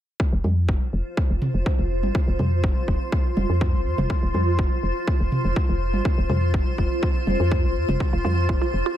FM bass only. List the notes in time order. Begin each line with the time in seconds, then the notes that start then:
0.33 F1
0.44 F2
0.69 F1
0.93 F1
1.30 F1
1.54 F1
1.79 F1
2.03 G#1
2.28 F1
2.39 F2
2.64 F1
2.88 F1
3.37 F1
3.50 F2
3.74 F1
3.86 F2
3.98 F1
4.23 F1
4.34 F2
4.59 F1
4.83 F1
5.20 F1
5.45 F1
5.69 F1
5.93 G#1
6.18 F1
6.30 F2
6.54 F1
6.78 F1
7.27 F1
7.40 F2
7.64 F1
7.76 F2
7.89 F1
8.13 F1
8.25 F2
8.49 F1
8.74 F1